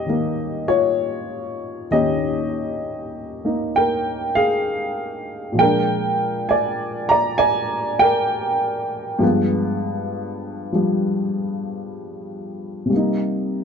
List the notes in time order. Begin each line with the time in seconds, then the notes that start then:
Already playing: D#2 D#3 G3 C#4 G4 D#5
0.06 D#3 A#3
0.68 F4 C#5
1.91 D#2 D#3 C#4 G4 D#5
3.45 A#3 D#4
3.76 A#4 G5
4.35 G#4 F5
5.52 A#2 F3
5.59 G#3 D4 A#4 G5
6.49 D5 G#5
7.09 D5 A#5
7.38 D5 G#5
7.99 A#4 G5
9.19 G2 F3 G#3
9.23 B3
10.72 F3 G3
12.86 C3
12.90 G3 A#3
12.96 D#4